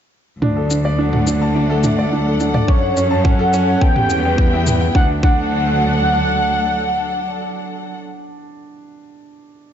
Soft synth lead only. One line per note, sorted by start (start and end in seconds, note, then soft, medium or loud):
0.42 1.00 D5 medium
0.98 1.56 F#5 medium
1.55 2.12 E5 medium
2.11 2.54 D5 medium
2.68 3.26 C#5 loud
3.24 3.83 F#5 loud
3.81 4.66 G5 loud
4.95 5.11 F#5 medium
5.23 7.97 F#5 loud